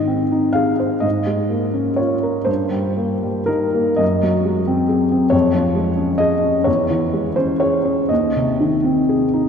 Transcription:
0.00 0.97 G#2 soft
0.00 0.23 D#3 soft
0.00 0.55 D#5 medium
0.08 0.47 C4 soft
0.32 0.71 D#4 soft
0.53 0.94 G#4 soft
0.53 1.02 F5 medium
0.80 1.04 C5 soft
1.00 2.43 G#2 soft
1.00 1.97 D#5 medium
1.26 1.65 G#3 soft
1.50 1.89 A#3 soft
1.74 2.13 C#4 soft
1.96 2.38 F4 soft
1.96 2.46 C#5 soft
2.23 2.48 A#4 soft
2.45 3.96 G2 soft
2.45 3.49 C5 soft
2.71 3.13 G3 soft
2.97 3.39 A#3 soft
3.23 3.66 G3 soft
3.46 3.90 D#4 soft
3.46 3.99 A#4 medium
3.75 4.00 A#3 soft
3.96 5.28 F#2 soft
3.96 5.31 D#5 medium
4.23 4.59 F#3 soft
4.45 4.81 G#3 soft
4.67 5.03 C4 soft
4.89 5.24 G#4 soft
5.12 5.33 C4 soft
5.30 6.63 F2 soft
5.30 6.19 C#5 medium
5.55 5.90 F3 soft
5.75 6.11 G#3 soft
5.97 6.34 C#4 soft
6.18 6.57 G#4 soft
6.18 6.66 D#5 medium
6.43 6.67 C#4 soft
6.64 8.06 E2 soft
6.64 7.36 C#5 medium
6.90 7.28 E3 soft
7.13 7.52 G#3 soft
7.36 7.76 C#4 soft
7.36 7.61 C5 medium
7.60 8.01 G#4 soft
7.60 8.09 C#5 medium
7.85 8.10 C#4 soft
8.09 9.49 D#2 soft
8.09 9.49 D#5 soft
8.36 8.75 C3 soft
8.60 9.00 D#3 soft
8.84 9.24 C4 soft
9.09 9.49 G#4 soft
9.34 9.49 D#4 soft

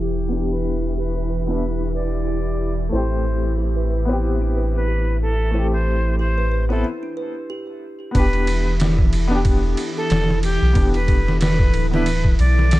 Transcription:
0.00 2.91 E1 medium
0.00 6.85 E3 medium
0.00 0.27 B3 medium
0.00 0.29 D4 medium
0.00 6.85 E4 medium
0.00 0.31 G4 medium
0.00 6.85 G4 medium
0.00 0.46 G4 medium
0.28 1.42 B3 medium
0.28 1.44 D4 medium
0.28 0.50 E4 medium
0.36 1.46 G4 medium
0.51 0.94 B4 medium
0.98 1.14 G4 medium
0.98 1.43 B4 medium
1.16 1.28 B4 medium
1.30 1.47 B4 medium
1.47 1.62 B3 medium
1.47 1.63 D4 medium
1.47 1.61 E4 medium
1.47 1.64 E4 medium
1.47 1.92 B4 medium
1.62 1.80 E4 medium
1.80 1.94 D4 medium
1.95 2.13 B4 medium
1.95 2.82 D5 medium
2.28 2.92 G4 medium
2.89 6.84 A1 medium
2.89 4.03 A3 medium
2.89 4.05 C4 medium
2.89 3.11 E4 medium
2.93 4.07 G4 medium
2.93 3.53 C5 medium
3.57 3.75 G4 medium
3.76 3.89 B4 medium
3.91 4.07 B4 medium
4.05 5.49 B3 medium
4.05 5.50 C4 medium
4.09 4.22 E4 medium
4.09 5.52 G4 medium
4.24 4.41 E4 medium
4.42 4.55 D4 medium
4.56 4.74 B4 medium
4.75 5.17 B4 medium
4.88 5.52 G4 medium
5.22 5.67 A4 medium
5.51 6.64 A3 medium
5.51 6.66 C4 medium
5.51 5.72 E4 medium
5.58 6.68 G4 medium
5.73 6.15 C5 medium
6.19 6.36 G4 medium
6.19 6.65 C5 medium
6.38 6.50 B4 medium
6.51 6.68 B4 medium
6.69 6.84 B3 medium
6.69 6.85 C4 medium
6.69 6.83 E4 medium
6.69 6.86 E4 medium
6.69 6.84 A4 medium
6.84 7.02 E4 medium
7.03 7.16 D4 medium
7.17 7.35 B4 medium
7.50 8.14 G4 medium
8.11 9.75 E1 loud
8.11 12.80 E3 medium
8.11 9.25 B3 medium
8.11 9.27 D4 medium
8.11 12.80 E4 medium
8.11 12.80 A4 medium
8.11 8.75 B4 loud
8.11 kick loud
8.11 ride medium
8.19 9.29 G4 medium
8.33 ride soft
8.47 ride medium
8.80 snare loud
8.80 ride medium
8.99 kick loud
9.13 ride medium
9.28 10.71 B3 medium
9.28 10.72 D4 medium
9.35 10.74 G4 loud
9.45 kick loud
9.45 ride medium
9.77 ride medium
9.97 10.39 A4 loud
10.10 10.58 E1 medium
10.10 snare loud
10.10 ride medium
10.30 snare medium
10.43 10.89 G4 loud
10.43 ride medium
10.62 10.74 B1 medium
10.73 11.71 E1 medium
10.73 11.86 B3 medium
10.73 11.88 D4 medium
10.73 kick loud
10.73 ride medium
10.81 11.90 G4 medium
10.94 11.37 B4 medium
10.94 ride soft
11.08 kick medium
11.08 ride medium
11.28 snare medium
11.41 11.87 B4 medium
11.41 snare loud
11.41 ride medium
11.59 kick loud
11.74 12.36 D1 medium
11.74 ride medium
11.91 12.06 B3 medium
11.91 12.07 D4 medium
11.91 12.08 E4 loud
11.91 12.35 B4 medium
11.91 snare medium
12.06 ride medium
12.25 kick medium
12.39 12.80 B1 medium
12.39 12.80 D5 loud
12.39 ride medium
12.59 snare soft
12.71 snare loud
12.71 ride medium

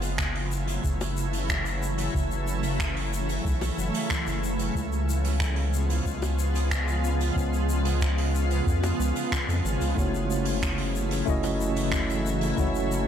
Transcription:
0.00 0.79 F#1 medium
0.00 13.08 C#3 medium
0.00 4.72 E3 medium
0.00 4.72 F#3 medium
0.00 4.72 A3 medium
0.00 4.72 E4 medium
0.00 open hi-hat medium
0.00 shaker soft
0.18 finger snap medium
0.18 kick loud
0.18 shaker medium
0.35 open hi-hat medium
0.52 shaker medium
0.67 open hi-hat medium
0.67 shaker soft
0.84 2.09 F#1 medium
0.84 kick medium
0.84 shaker medium
1.01 open hi-hat medium
1.01 high bongo medium
1.01 shaker soft
1.17 shaker medium
1.33 open hi-hat medium
1.33 shaker medium
1.49 finger snap medium
1.49 kick medium
1.49 shaker medium
1.66 open hi-hat soft
1.66 shaker soft
1.83 shaker medium
1.98 open hi-hat medium
1.98 shaker soft
2.14 3.40 F#1 medium
2.14 kick loud
2.14 shaker soft
2.31 shaker soft
2.48 shaker medium
2.63 open hi-hat medium
2.63 shaker soft
2.80 finger snap loud
2.80 kick loud
2.80 shaker medium
2.96 open hi-hat medium
3.13 shaker medium
3.29 open hi-hat medium
3.29 shaker medium
3.45 3.71 B1 loud
3.45 kick loud
3.45 shaker medium
3.61 open hi-hat medium
3.61 high bongo medium
3.61 shaker soft
3.78 3.91 F#1 medium
3.78 shaker medium
3.94 open hi-hat medium
3.94 shaker medium
4.10 finger snap loud
4.10 kick loud
4.10 shaker medium
4.27 4.70 F#1 medium
4.27 open hi-hat soft
4.27 shaker soft
4.44 shaker medium
4.59 open hi-hat medium
4.59 shaker soft
4.75 6.00 C#2 medium
4.75 9.93 F3 medium
4.75 9.93 G#3 medium
4.75 9.93 B3 medium
4.75 9.93 F4 medium
4.75 kick loud
4.75 shaker soft
4.93 shaker soft
5.09 shaker medium
5.25 open hi-hat medium
5.25 shaker medium
5.40 finger snap medium
5.40 kick loud
5.40 shaker medium
5.56 open hi-hat medium
5.74 shaker medium
5.90 open hi-hat medium
5.90 shaker soft
6.06 7.31 C#2 medium
6.06 kick loud
6.06 shaker medium
6.22 open hi-hat medium
6.22 high bongo medium
6.22 shaker soft
6.39 shaker medium
6.55 open hi-hat medium
6.55 shaker soft
6.71 finger snap medium
6.71 kick loud
6.71 shaker medium
6.87 open hi-hat soft
6.87 shaker soft
7.04 shaker medium
7.21 open hi-hat medium
7.21 shaker soft
7.36 8.61 C#2 loud
7.36 kick loud
7.36 shaker medium
7.53 shaker soft
7.69 shaker medium
7.85 open hi-hat medium
7.85 shaker medium
8.01 finger snap medium
8.01 kick loud
8.01 shaker medium
8.18 open hi-hat medium
8.35 shaker medium
8.51 open hi-hat medium
8.51 shaker soft
8.67 8.93 F2 loud
8.67 kick loud
8.67 shaker medium
8.83 open hi-hat medium
8.83 high bongo medium
8.83 shaker soft
8.99 9.12 C#2 medium
8.99 shaker medium
9.16 open hi-hat medium
9.16 shaker soft
9.32 finger snap medium
9.32 kick loud
9.32 shaker medium
9.48 9.61 F2 medium
9.48 open hi-hat soft
9.48 shaker soft
9.64 9.77 G#1 loud
9.64 shaker medium
9.81 9.94 C#2 medium
9.81 open hi-hat medium
9.81 shaker soft
9.95 11.22 F#1 medium
9.95 13.08 E3 medium
9.95 13.08 F#3 medium
9.95 11.23 A3 medium
9.95 13.08 A3 medium
9.95 11.23 C#4 medium
9.95 11.24 E4 medium
9.95 13.08 E4 medium
9.95 11.24 F#4 medium
9.95 kick loud
9.95 shaker medium
9.99 11.25 C#5 medium
10.15 shaker soft
10.31 shaker medium
10.45 open hi-hat medium
10.45 shaker soft
10.62 finger snap medium
10.62 kick loud
10.62 shaker medium
10.78 open hi-hat medium
10.96 shaker medium
11.11 open hi-hat medium
11.11 shaker medium
11.26 12.53 F#1 medium
11.26 12.53 A3 medium
11.26 12.54 C#4 medium
11.26 12.54 E4 medium
11.26 12.55 F#4 medium
11.26 12.55 D#5 medium
11.26 kick loud
11.26 shaker medium
11.43 open hi-hat medium
11.43 high bongo medium
11.43 shaker soft
11.61 shaker medium
11.76 open hi-hat medium
11.76 shaker soft
11.92 finger snap medium
11.92 kick medium
11.92 shaker medium
12.10 open hi-hat soft
12.10 shaker soft
12.26 shaker medium
12.41 open hi-hat medium
12.41 shaker soft
12.56 13.08 F#1 medium
12.56 13.08 A3 medium
12.56 13.08 C#4 medium
12.56 13.08 E4 medium
12.56 13.08 F#4 medium
12.56 13.08 C#5 medium
12.56 kick loud
12.56 shaker medium
12.75 shaker soft
12.92 shaker medium

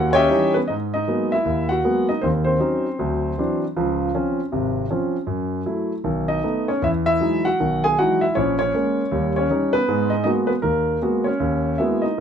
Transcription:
0.00 0.24 D#2 medium
0.00 0.16 F#4 medium
0.11 0.28 C#4 medium
0.11 0.52 G4 medium
0.11 0.55 C#5 loud
0.11 0.13 F#5 medium
0.11 0.52 G5 medium
0.15 0.52 D#5 medium
0.15 0.52 E5 medium
0.30 0.56 E3 medium
0.30 0.56 G3 medium
0.30 0.56 C#4 medium
0.30 0.56 D#4 medium
0.54 0.61 B3 medium
0.54 0.59 B4 medium
0.68 1.03 G#2 medium
0.68 0.75 D#4 medium
0.68 0.73 D#5 medium
0.94 1.31 D#4 medium
0.94 1.30 D#5 medium
1.08 1.34 F#3 soft
1.08 1.34 G#3 soft
1.08 1.34 A#3 soft
1.08 1.34 B3 soft
1.32 1.69 E4 medium
1.32 1.72 E5 medium
1.45 1.79 D#2 medium
1.69 2.06 F#4 medium
1.69 2.05 F#5 medium
1.84 2.10 F#3 soft
1.84 2.10 G#3 soft
1.84 2.10 A#3 soft
1.84 2.10 B3 medium
2.09 2.23 D#4 medium
2.09 2.23 D#5 medium
2.22 2.56 D#2 medium
2.22 2.56 D#3 medium
2.22 2.29 C4 medium
2.22 2.27 C5 medium
2.44 3.38 C4 medium
2.44 3.56 C5 medium
2.60 2.86 F#3 soft
2.60 2.86 C#4 soft
2.60 2.86 D#4 medium
2.99 3.32 D2 medium
2.99 3.32 F#3 medium
3.38 3.63 E3 soft
3.38 3.63 F#3 soft
3.38 3.63 C4 soft
3.38 3.63 D4 medium
3.76 4.08 C#2 medium
3.76 4.08 F3 medium
4.14 4.39 F3 medium
4.14 4.39 C4 soft
4.14 4.39 C#4 medium
4.52 4.85 G#1 medium
4.52 4.84 C3 medium
4.90 5.15 F3 soft
4.90 5.16 C4 soft
4.90 5.15 C#4 medium
5.27 5.60 F#2 medium
5.66 5.91 F#3 soft
5.66 5.92 A3 soft
5.66 5.92 E4 medium
6.04 6.38 B1 medium
6.04 6.38 D#3 medium
6.28 6.42 D#4 medium
6.28 6.69 D#5 medium
6.44 6.70 A3 soft
6.44 6.70 B3 soft
6.44 6.70 D#4 soft
6.68 6.82 C#4 medium
6.68 6.81 C#5 medium
6.82 7.16 E2 medium
6.82 6.89 E4 medium
6.82 6.89 E5 medium
7.06 7.42 E4 medium
7.06 7.46 E5 loud
7.20 7.47 E3 medium
7.20 7.47 F#3 soft
7.20 7.47 G#3 soft
7.20 7.47 D#4 medium
7.45 7.81 F#4 medium
7.45 7.85 F#5 medium
7.60 7.93 B1 medium
7.60 7.93 D#3 medium
7.84 7.97 G#4 medium
7.84 7.98 G#5 medium
7.99 8.24 E3 soft
7.99 8.24 F#3 soft
7.99 8.25 G#3 soft
7.99 8.25 D#4 medium
7.99 8.21 F#4 medium
7.99 8.23 F#5 medium
8.21 8.35 E4 medium
8.21 8.35 E5 medium
8.35 8.69 A#1 medium
8.35 8.59 C#4 medium
8.35 8.57 C#5 medium
8.59 8.74 C#4 medium
8.59 9.32 C#5 medium
8.74 9.00 G#3 soft
8.74 9.00 A#3 soft
8.74 9.00 C#4 medium
9.11 9.45 D#2 medium
9.11 9.45 G3 medium
9.36 9.49 C#4 medium
9.36 9.72 C#5 medium
9.50 9.76 G3 soft
9.50 9.76 C#4 soft
9.50 9.76 D#4 medium
9.73 10.10 B3 medium
9.73 10.13 B4 medium
9.88 10.21 G#2 medium
9.88 10.21 G#3 medium
10.10 10.23 D#4 medium
10.10 10.22 D#5 medium
10.24 10.51 G#3 medium
10.24 10.51 A#3 soft
10.24 10.48 B3 soft
10.24 10.30 D#4 medium
10.24 10.52 F#4 medium
10.24 10.29 D#5 medium
10.47 10.54 B3 medium
10.47 10.52 B4 medium
10.62 10.96 D#2 medium
10.62 10.96 D#3 medium
10.62 10.99 A#3 medium
10.62 10.98 A#4 medium
11.02 11.27 G#3 soft
11.02 11.28 A#3 soft
11.02 11.28 B3 soft
11.02 11.28 F#4 medium
11.24 11.75 C#4 medium
11.24 11.79 C#5 medium
11.40 11.73 D#2 medium
11.78 12.05 G#3 soft
11.78 12.05 A#3 soft
11.78 12.05 B3 soft
11.78 12.02 E4 medium
11.78 12.05 F#4 medium
11.78 12.03 E5 medium
12.02 12.20 D#4 medium
12.02 12.20 D#5 medium

